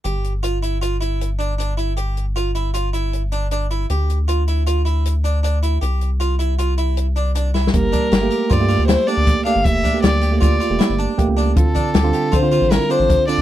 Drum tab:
HH |x--x--x--x--x--x--x--x--x--x--|x--x--x--x--x--x--x--x--x--x--|x--x--x--x--x--x--x--x--x--x--|x--x--x--x--x--x--x--x--x-----|
SD |------------------------------|------------------------------|------------------------------|---------------------------o-o|
BD |------------------------------|------------------------------|------------------------------|------------------------------|

HH |x--x--x--x--x--x--x--x--x--x--|x--x--x--x--x--x--x--x--x--x--|x--x--x--x--x--x--x--x--x--x--|
SD |------o-----------o-----------|------o-----------o--------o--|------o-----------o-----------|
BD |o--o--------o-----------o-----|o--o--------o-----------o-----|o--o--------o-----------o-----|